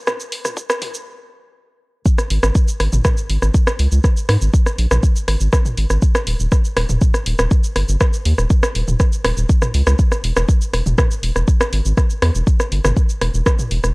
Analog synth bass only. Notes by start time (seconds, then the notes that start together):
2.31 G#1
2.43 G#1
2.80 G#1
2.93 G#1
3.30 G#1
3.42 G#1
3.79 C#2
3.92 C#2
4.29 G#2
4.42 G#1
4.78 A#1
4.91 A#1
5.28 G#1
5.41 G#1
5.78 G#1
5.90 G#1
6.27 D#1
6.40 D#1
6.77 D#1
6.89 D#1
7.26 D#1
7.39 D#1
7.76 G1
7.89 G1
8.25 D#2
8.38 D#1
8.75 D#1
8.88 D#1
9.25 D#1
9.37 D#1
9.74 C#2
9.87 C#2
10.24 E1
10.36 E1
10.73 E1
10.86 E1
11.23 E1
11.36 E1
11.73 G#1
11.85 G#1
12.22 E2
12.35 E1
12.72 G1
12.85 G1
13.21 E1
13.34 E1
13.71 E1
13.84 E1